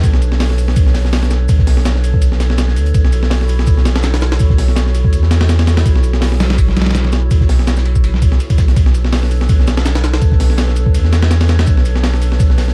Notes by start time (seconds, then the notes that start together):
Already playing: D4 A4 B4 C#5
0.04 B1, kick, ride, shaker
0.14 snare
0.22 ride, shaker
0.32 snare
0.40 snare, open hi-hat, ride
0.50 snare
0.58 ride, shaker
0.68 snare
0.76 kick, ride, shaker
0.86 snare
0.94 snare, open hi-hat, ride
1.05 snare
1.12 snare, open hi-hat, ride
1.23 snare, closed hi-hat
1.30 snare, ride, shaker
1.48 B1, kick, ride, shaker
1.59 kick, snare
1.67 snare, open hi-hat, shaker
1.77 snare
1.85 snare, ride, shaker
1.96 snare
2.04 ride, shaker
2.14 kick
2.22 ride, shaker
2.32 snare
2.40 snare, ride, shaker
2.50 snare
2.58 snare, ride, shaker
2.68 snare
2.76 D2, ride, shaker
2.86 closed hi-hat, ride
2.94 B1 E4 F#4, kick, ride, shaker
3.05 snare
3.12 ride, shaker
3.23 snare
3.31 snare, open hi-hat, ride
3.41 snare
3.48 ride, shaker
3.59 snare
3.67 kick, ride, shaker
3.77 snare
3.85 snare, ride, shaker
3.96 snare, ride
4.03 snare, ride, shaker
4.14 snare, closed hi-hat, ride
4.21 snare, ride, shaker
4.32 snare, ride
4.39 B1, kick, ride, shaker
4.50 kick, snare
4.58 snare, open hi-hat, shaker
4.68 snare
4.76 snare, ride, shaker
4.86 snare
4.94 ride, shaker
5.05 kick
5.12 E2, ride, shaker
5.23 snare
5.31 snare, ride, shaker
5.41 snare, ride
5.49 snare, ride, shaker
5.59 snare, ride
5.67 snare, ride, shaker
5.77 snare, closed hi-hat, ride
5.85 B1, kick, ride, shaker
5.95 snare
6.03 ride, shaker
6.13 snare
6.21 snare, open hi-hat, ride
6.32 snare
6.40 snare, ride, shaker
6.50 snare, ride
6.58 kick, ride, shaker
6.69 snare
6.77 snare, ride, shaker
6.82 snare, ride
6.86 snare, ride
6.91 snare, ride
6.95 snare, ride, shaker
7.04 snare, closed hi-hat
7.12 snare, ride, shaker
7.31 B1, kick, ride, shaker
7.41 kick, snare
7.49 snare, open hi-hat, shaker
7.59 snare
7.67 snare, ride, shaker
7.76 snare, shaker
7.85 ride
7.95 kick, shaker
8.04 ride, shaker
8.14 snare
8.22 kick, ride, shaker
8.32 snare
8.40 ride, shaker
8.50 kick, ride
8.58 B1, kick, snare, ride, shaker
8.68 snare, closed hi-hat
8.76 B1 D4 A4 B4 C#5, kick, ride, shaker
8.86 snare
8.94 ride, shaker
9.05 snare
9.12 snare, open hi-hat, ride
9.23 snare
9.31 ride, shaker
9.41 snare
9.49 kick, ride, shaker
9.59 snare
9.67 snare, ride, shaker
9.77 snare, ride
9.85 snare, ride, shaker
9.95 snare, closed hi-hat, ride
10.04 snare, ride, shaker
10.13 snare, ride
10.22 B1, kick, ride, shaker
10.32 kick, snare
10.40 snare, open hi-hat, shaker
10.50 snare
10.58 snare, ride, shaker
10.68 snare
10.76 ride, shaker
10.86 kick
10.94 E2, ride, shaker
11.05 snare
11.12 snare, ride, shaker
11.22 snare, ride
11.31 snare, ride, shaker
11.41 snare, ride
11.48 snare, ride, shaker
11.59 snare, closed hi-hat, ride
11.66 B1, kick, ride, shaker
11.77 snare
11.85 ride, shaker
11.95 snare
12.03 snare, open hi-hat, ride
12.14 snare
12.22 ride, shaker
12.32 snare
12.40 kick, ride, shaker
12.50 snare
12.58 snare, open hi-hat, ride
12.68 snare